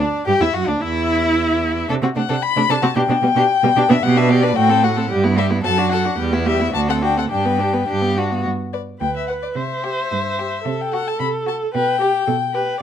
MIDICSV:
0, 0, Header, 1, 5, 480
1, 0, Start_track
1, 0, Key_signature, 1, "major"
1, 0, Tempo, 538117
1, 724, Time_signature, 2, 2, 24, 8
1, 5513, Tempo, 566572
1, 7913, Tempo, 541516
1, 11287, End_track
2, 0, Start_track
2, 0, Title_t, "Violin"
2, 0, Program_c, 0, 40
2, 2, Note_on_c, 0, 74, 61
2, 227, Note_off_c, 0, 74, 0
2, 238, Note_on_c, 0, 79, 77
2, 374, Note_on_c, 0, 76, 74
2, 387, Note_off_c, 0, 79, 0
2, 490, Note_on_c, 0, 78, 73
2, 504, Note_off_c, 0, 76, 0
2, 611, Note_on_c, 0, 74, 63
2, 624, Note_off_c, 0, 78, 0
2, 728, Note_off_c, 0, 74, 0
2, 732, Note_on_c, 0, 76, 77
2, 1671, Note_off_c, 0, 76, 0
2, 1930, Note_on_c, 0, 78, 78
2, 2163, Note_on_c, 0, 83, 90
2, 2176, Note_off_c, 0, 78, 0
2, 2409, Note_on_c, 0, 81, 76
2, 2423, Note_off_c, 0, 83, 0
2, 2641, Note_off_c, 0, 81, 0
2, 2646, Note_on_c, 0, 79, 92
2, 3489, Note_on_c, 0, 76, 83
2, 3502, Note_off_c, 0, 79, 0
2, 3595, Note_on_c, 0, 78, 97
2, 3608, Note_off_c, 0, 76, 0
2, 3722, Note_on_c, 0, 76, 85
2, 3736, Note_off_c, 0, 78, 0
2, 3829, Note_on_c, 0, 74, 92
2, 3843, Note_off_c, 0, 76, 0
2, 4067, Note_on_c, 0, 79, 97
2, 4080, Note_off_c, 0, 74, 0
2, 4318, Note_on_c, 0, 78, 80
2, 4331, Note_off_c, 0, 79, 0
2, 4555, Note_off_c, 0, 78, 0
2, 4799, Note_on_c, 0, 76, 82
2, 4870, Note_off_c, 0, 76, 0
2, 5038, Note_on_c, 0, 81, 99
2, 5269, Note_off_c, 0, 81, 0
2, 5276, Note_on_c, 0, 78, 82
2, 5509, Note_off_c, 0, 78, 0
2, 5748, Note_on_c, 0, 76, 83
2, 5970, Note_off_c, 0, 76, 0
2, 5989, Note_on_c, 0, 81, 92
2, 6037, Note_off_c, 0, 81, 0
2, 6121, Note_on_c, 0, 78, 78
2, 6166, Note_off_c, 0, 78, 0
2, 6237, Note_on_c, 0, 79, 77
2, 6351, Note_off_c, 0, 79, 0
2, 6362, Note_on_c, 0, 78, 77
2, 6408, Note_off_c, 0, 78, 0
2, 6473, Note_on_c, 0, 79, 71
2, 6947, Note_off_c, 0, 79, 0
2, 7676, Note_on_c, 0, 74, 50
2, 7744, Note_off_c, 0, 74, 0
2, 7909, Note_on_c, 0, 79, 65
2, 8030, Note_off_c, 0, 79, 0
2, 8047, Note_on_c, 0, 76, 56
2, 8144, Note_off_c, 0, 76, 0
2, 8149, Note_on_c, 0, 78, 54
2, 8199, Note_off_c, 0, 78, 0
2, 8278, Note_on_c, 0, 74, 52
2, 8326, Note_off_c, 0, 74, 0
2, 8389, Note_on_c, 0, 76, 60
2, 9509, Note_on_c, 0, 79, 63
2, 9522, Note_off_c, 0, 76, 0
2, 9610, Note_off_c, 0, 79, 0
2, 9615, Note_on_c, 0, 78, 68
2, 9746, Note_on_c, 0, 81, 63
2, 9759, Note_off_c, 0, 78, 0
2, 9845, Note_off_c, 0, 81, 0
2, 9850, Note_on_c, 0, 83, 75
2, 9921, Note_off_c, 0, 83, 0
2, 10101, Note_on_c, 0, 81, 57
2, 10171, Note_off_c, 0, 81, 0
2, 10340, Note_on_c, 0, 79, 80
2, 11258, Note_off_c, 0, 79, 0
2, 11287, End_track
3, 0, Start_track
3, 0, Title_t, "Violin"
3, 0, Program_c, 1, 40
3, 232, Note_on_c, 1, 67, 74
3, 361, Note_on_c, 1, 64, 66
3, 374, Note_off_c, 1, 67, 0
3, 479, Note_on_c, 1, 66, 65
3, 492, Note_off_c, 1, 64, 0
3, 596, Note_on_c, 1, 62, 59
3, 609, Note_off_c, 1, 66, 0
3, 713, Note_on_c, 1, 64, 74
3, 726, Note_off_c, 1, 62, 0
3, 1680, Note_off_c, 1, 64, 0
3, 1686, Note_on_c, 1, 69, 72
3, 1734, Note_off_c, 1, 69, 0
3, 1812, Note_on_c, 1, 66, 49
3, 1858, Note_off_c, 1, 66, 0
3, 1927, Note_on_c, 1, 62, 61
3, 1974, Note_off_c, 1, 62, 0
3, 2041, Note_on_c, 1, 69, 69
3, 2090, Note_off_c, 1, 69, 0
3, 2288, Note_on_c, 1, 62, 69
3, 2335, Note_off_c, 1, 62, 0
3, 2405, Note_on_c, 1, 69, 80
3, 2453, Note_off_c, 1, 69, 0
3, 2518, Note_on_c, 1, 66, 69
3, 2567, Note_off_c, 1, 66, 0
3, 2639, Note_on_c, 1, 67, 68
3, 2687, Note_off_c, 1, 67, 0
3, 2765, Note_on_c, 1, 62, 55
3, 2811, Note_off_c, 1, 62, 0
3, 2882, Note_on_c, 1, 59, 69
3, 2928, Note_off_c, 1, 59, 0
3, 2998, Note_on_c, 1, 67, 87
3, 3046, Note_off_c, 1, 67, 0
3, 3238, Note_on_c, 1, 59, 64
3, 3286, Note_off_c, 1, 59, 0
3, 3353, Note_on_c, 1, 67, 74
3, 3402, Note_off_c, 1, 67, 0
3, 3478, Note_on_c, 1, 62, 69
3, 3526, Note_off_c, 1, 62, 0
3, 3602, Note_on_c, 1, 67, 65
3, 3722, Note_on_c, 1, 71, 59
3, 3736, Note_off_c, 1, 67, 0
3, 3838, Note_on_c, 1, 67, 71
3, 3851, Note_off_c, 1, 71, 0
3, 3952, Note_on_c, 1, 71, 61
3, 3965, Note_off_c, 1, 67, 0
3, 4071, Note_off_c, 1, 71, 0
3, 4076, Note_on_c, 1, 66, 62
3, 4190, Note_on_c, 1, 69, 64
3, 4204, Note_off_c, 1, 66, 0
3, 4312, Note_on_c, 1, 66, 61
3, 4325, Note_off_c, 1, 69, 0
3, 4430, Note_on_c, 1, 69, 59
3, 4443, Note_off_c, 1, 66, 0
3, 4546, Note_off_c, 1, 69, 0
3, 4551, Note_on_c, 1, 67, 64
3, 4671, Note_on_c, 1, 64, 60
3, 4685, Note_off_c, 1, 67, 0
3, 4784, Note_on_c, 1, 67, 63
3, 4797, Note_off_c, 1, 64, 0
3, 4910, Note_on_c, 1, 64, 58
3, 4923, Note_off_c, 1, 67, 0
3, 5025, Note_off_c, 1, 64, 0
3, 5030, Note_on_c, 1, 69, 63
3, 5156, Note_on_c, 1, 66, 64
3, 5170, Note_off_c, 1, 69, 0
3, 5284, Note_on_c, 1, 69, 56
3, 5297, Note_off_c, 1, 66, 0
3, 5396, Note_on_c, 1, 66, 60
3, 5409, Note_off_c, 1, 69, 0
3, 5514, Note_off_c, 1, 66, 0
3, 5517, Note_on_c, 1, 67, 59
3, 5639, Note_on_c, 1, 64, 56
3, 5652, Note_off_c, 1, 67, 0
3, 5750, Note_on_c, 1, 67, 57
3, 5763, Note_off_c, 1, 64, 0
3, 5866, Note_on_c, 1, 64, 50
3, 5879, Note_off_c, 1, 67, 0
3, 5982, Note_off_c, 1, 64, 0
3, 5987, Note_on_c, 1, 66, 58
3, 6106, Note_on_c, 1, 69, 57
3, 6119, Note_off_c, 1, 66, 0
3, 6228, Note_on_c, 1, 66, 52
3, 6241, Note_off_c, 1, 69, 0
3, 6352, Note_on_c, 1, 69, 46
3, 6365, Note_off_c, 1, 66, 0
3, 6468, Note_off_c, 1, 69, 0
3, 6474, Note_on_c, 1, 67, 49
3, 6588, Note_on_c, 1, 71, 51
3, 6601, Note_off_c, 1, 67, 0
3, 6716, Note_on_c, 1, 67, 52
3, 6728, Note_off_c, 1, 71, 0
3, 6832, Note_on_c, 1, 71, 49
3, 6845, Note_off_c, 1, 67, 0
3, 6952, Note_off_c, 1, 71, 0
3, 6958, Note_on_c, 1, 67, 70
3, 7204, Note_on_c, 1, 66, 61
3, 7217, Note_off_c, 1, 67, 0
3, 7445, Note_off_c, 1, 66, 0
3, 7682, Note_on_c, 1, 71, 47
3, 7855, Note_off_c, 1, 71, 0
3, 8166, Note_on_c, 1, 71, 46
3, 8343, Note_off_c, 1, 71, 0
3, 8645, Note_on_c, 1, 67, 48
3, 8826, Note_off_c, 1, 67, 0
3, 9130, Note_on_c, 1, 67, 51
3, 9311, Note_off_c, 1, 67, 0
3, 9616, Note_on_c, 1, 66, 62
3, 9794, Note_off_c, 1, 66, 0
3, 10088, Note_on_c, 1, 66, 59
3, 10270, Note_off_c, 1, 66, 0
3, 10573, Note_on_c, 1, 67, 64
3, 10747, Note_off_c, 1, 67, 0
3, 11043, Note_on_c, 1, 67, 56
3, 11215, Note_off_c, 1, 67, 0
3, 11287, End_track
4, 0, Start_track
4, 0, Title_t, "Viola"
4, 0, Program_c, 2, 41
4, 0, Note_on_c, 2, 62, 55
4, 220, Note_off_c, 2, 62, 0
4, 239, Note_on_c, 2, 67, 61
4, 288, Note_off_c, 2, 67, 0
4, 362, Note_on_c, 2, 64, 59
4, 410, Note_off_c, 2, 64, 0
4, 483, Note_on_c, 2, 66, 67
4, 607, Note_on_c, 2, 62, 57
4, 620, Note_off_c, 2, 66, 0
4, 729, Note_on_c, 2, 64, 70
4, 742, Note_off_c, 2, 62, 0
4, 1681, Note_off_c, 2, 64, 0
4, 1686, Note_on_c, 2, 62, 66
4, 1734, Note_off_c, 2, 62, 0
4, 1807, Note_on_c, 2, 60, 54
4, 1854, Note_off_c, 2, 60, 0
4, 1923, Note_on_c, 2, 57, 43
4, 1971, Note_off_c, 2, 57, 0
4, 2050, Note_on_c, 2, 62, 69
4, 2097, Note_off_c, 2, 62, 0
4, 2285, Note_on_c, 2, 57, 60
4, 2333, Note_off_c, 2, 57, 0
4, 2406, Note_on_c, 2, 62, 89
4, 2453, Note_off_c, 2, 62, 0
4, 2523, Note_on_c, 2, 60, 60
4, 2570, Note_off_c, 2, 60, 0
4, 2640, Note_on_c, 2, 62, 71
4, 2687, Note_off_c, 2, 62, 0
4, 2761, Note_on_c, 2, 59, 55
4, 2808, Note_off_c, 2, 59, 0
4, 2880, Note_on_c, 2, 55, 49
4, 2927, Note_off_c, 2, 55, 0
4, 2997, Note_on_c, 2, 62, 79
4, 3045, Note_off_c, 2, 62, 0
4, 3242, Note_on_c, 2, 55, 65
4, 3289, Note_off_c, 2, 55, 0
4, 3357, Note_on_c, 2, 62, 91
4, 3405, Note_off_c, 2, 62, 0
4, 3470, Note_on_c, 2, 59, 65
4, 3518, Note_off_c, 2, 59, 0
4, 3595, Note_on_c, 2, 59, 63
4, 3712, Note_on_c, 2, 62, 65
4, 3725, Note_off_c, 2, 59, 0
4, 3828, Note_on_c, 2, 59, 65
4, 3841, Note_off_c, 2, 62, 0
4, 3948, Note_on_c, 2, 62, 60
4, 3962, Note_off_c, 2, 59, 0
4, 4062, Note_off_c, 2, 62, 0
4, 4068, Note_on_c, 2, 57, 57
4, 4182, Note_on_c, 2, 60, 61
4, 4196, Note_off_c, 2, 57, 0
4, 4308, Note_on_c, 2, 57, 62
4, 4321, Note_off_c, 2, 60, 0
4, 4431, Note_on_c, 2, 60, 54
4, 4444, Note_off_c, 2, 57, 0
4, 4546, Note_off_c, 2, 60, 0
4, 4551, Note_on_c, 2, 55, 68
4, 4675, Note_on_c, 2, 59, 61
4, 4688, Note_off_c, 2, 55, 0
4, 4795, Note_on_c, 2, 55, 62
4, 4809, Note_off_c, 2, 59, 0
4, 4914, Note_on_c, 2, 59, 57
4, 4927, Note_off_c, 2, 55, 0
4, 5025, Note_off_c, 2, 59, 0
4, 5031, Note_on_c, 2, 66, 58
4, 5154, Note_on_c, 2, 62, 54
4, 5167, Note_off_c, 2, 66, 0
4, 5278, Note_on_c, 2, 66, 60
4, 5291, Note_off_c, 2, 62, 0
4, 5399, Note_on_c, 2, 62, 55
4, 5412, Note_off_c, 2, 66, 0
4, 5512, Note_off_c, 2, 62, 0
4, 5517, Note_on_c, 2, 55, 59
4, 5634, Note_on_c, 2, 59, 54
4, 5647, Note_off_c, 2, 55, 0
4, 5747, Note_on_c, 2, 55, 58
4, 5760, Note_off_c, 2, 59, 0
4, 5868, Note_on_c, 2, 59, 52
4, 5881, Note_off_c, 2, 55, 0
4, 5985, Note_off_c, 2, 59, 0
4, 5990, Note_on_c, 2, 62, 49
4, 6108, Note_on_c, 2, 60, 52
4, 6121, Note_off_c, 2, 62, 0
4, 6221, Note_on_c, 2, 62, 53
4, 6234, Note_off_c, 2, 60, 0
4, 6345, Note_on_c, 2, 60, 50
4, 6358, Note_off_c, 2, 62, 0
4, 6458, Note_off_c, 2, 60, 0
4, 6463, Note_on_c, 2, 62, 53
4, 6588, Note_on_c, 2, 59, 51
4, 6601, Note_off_c, 2, 62, 0
4, 6706, Note_on_c, 2, 62, 51
4, 6718, Note_off_c, 2, 59, 0
4, 6827, Note_on_c, 2, 59, 51
4, 6840, Note_off_c, 2, 62, 0
4, 6944, Note_off_c, 2, 59, 0
4, 6949, Note_on_c, 2, 62, 44
4, 7067, Note_on_c, 2, 59, 47
4, 7080, Note_off_c, 2, 62, 0
4, 7195, Note_on_c, 2, 62, 48
4, 7207, Note_off_c, 2, 59, 0
4, 7318, Note_on_c, 2, 59, 50
4, 7331, Note_off_c, 2, 62, 0
4, 7441, Note_off_c, 2, 59, 0
4, 7911, Note_on_c, 2, 71, 45
4, 8395, Note_on_c, 2, 72, 56
4, 8409, Note_off_c, 2, 71, 0
4, 9363, Note_off_c, 2, 72, 0
4, 9368, Note_on_c, 2, 69, 60
4, 10313, Note_off_c, 2, 69, 0
4, 10329, Note_on_c, 2, 71, 69
4, 10563, Note_off_c, 2, 71, 0
4, 10567, Note_on_c, 2, 67, 54
4, 10793, Note_off_c, 2, 67, 0
4, 10798, Note_on_c, 2, 69, 50
4, 10869, Note_off_c, 2, 69, 0
4, 11034, Note_on_c, 2, 71, 60
4, 11266, Note_off_c, 2, 71, 0
4, 11287, End_track
5, 0, Start_track
5, 0, Title_t, "Cello"
5, 0, Program_c, 3, 42
5, 244, Note_on_c, 3, 43, 73
5, 292, Note_off_c, 3, 43, 0
5, 363, Note_on_c, 3, 40, 59
5, 411, Note_off_c, 3, 40, 0
5, 481, Note_on_c, 3, 42, 66
5, 600, Note_off_c, 3, 42, 0
5, 605, Note_on_c, 3, 38, 59
5, 653, Note_off_c, 3, 38, 0
5, 723, Note_on_c, 3, 40, 68
5, 1666, Note_off_c, 3, 40, 0
5, 1688, Note_on_c, 3, 48, 77
5, 1735, Note_off_c, 3, 48, 0
5, 1804, Note_on_c, 3, 48, 48
5, 1852, Note_off_c, 3, 48, 0
5, 1924, Note_on_c, 3, 48, 54
5, 1972, Note_off_c, 3, 48, 0
5, 2044, Note_on_c, 3, 48, 79
5, 2092, Note_off_c, 3, 48, 0
5, 2285, Note_on_c, 3, 48, 61
5, 2333, Note_off_c, 3, 48, 0
5, 2403, Note_on_c, 3, 48, 76
5, 2450, Note_off_c, 3, 48, 0
5, 2520, Note_on_c, 3, 48, 60
5, 2568, Note_off_c, 3, 48, 0
5, 2637, Note_on_c, 3, 47, 81
5, 2685, Note_off_c, 3, 47, 0
5, 2752, Note_on_c, 3, 47, 58
5, 2801, Note_off_c, 3, 47, 0
5, 2871, Note_on_c, 3, 47, 58
5, 2920, Note_off_c, 3, 47, 0
5, 2991, Note_on_c, 3, 47, 91
5, 3040, Note_off_c, 3, 47, 0
5, 3240, Note_on_c, 3, 47, 66
5, 3288, Note_off_c, 3, 47, 0
5, 3354, Note_on_c, 3, 47, 81
5, 3403, Note_off_c, 3, 47, 0
5, 3476, Note_on_c, 3, 47, 67
5, 3524, Note_off_c, 3, 47, 0
5, 3592, Note_on_c, 3, 47, 82
5, 4013, Note_off_c, 3, 47, 0
5, 4070, Note_on_c, 3, 45, 74
5, 4494, Note_off_c, 3, 45, 0
5, 4554, Note_on_c, 3, 43, 87
5, 4977, Note_off_c, 3, 43, 0
5, 5035, Note_on_c, 3, 42, 73
5, 5456, Note_off_c, 3, 42, 0
5, 5512, Note_on_c, 3, 40, 78
5, 5929, Note_off_c, 3, 40, 0
5, 5983, Note_on_c, 3, 38, 72
5, 6411, Note_off_c, 3, 38, 0
5, 6466, Note_on_c, 3, 43, 61
5, 6896, Note_off_c, 3, 43, 0
5, 6956, Note_on_c, 3, 43, 60
5, 7387, Note_off_c, 3, 43, 0
5, 7443, Note_on_c, 3, 43, 58
5, 7815, Note_off_c, 3, 43, 0
5, 7910, Note_on_c, 3, 38, 53
5, 8296, Note_off_c, 3, 38, 0
5, 8392, Note_on_c, 3, 48, 56
5, 8781, Note_off_c, 3, 48, 0
5, 8887, Note_on_c, 3, 43, 59
5, 9272, Note_off_c, 3, 43, 0
5, 9367, Note_on_c, 3, 48, 66
5, 9750, Note_off_c, 3, 48, 0
5, 9850, Note_on_c, 3, 48, 67
5, 10232, Note_off_c, 3, 48, 0
5, 10335, Note_on_c, 3, 47, 70
5, 10707, Note_off_c, 3, 47, 0
5, 10804, Note_on_c, 3, 47, 72
5, 11175, Note_off_c, 3, 47, 0
5, 11287, End_track
0, 0, End_of_file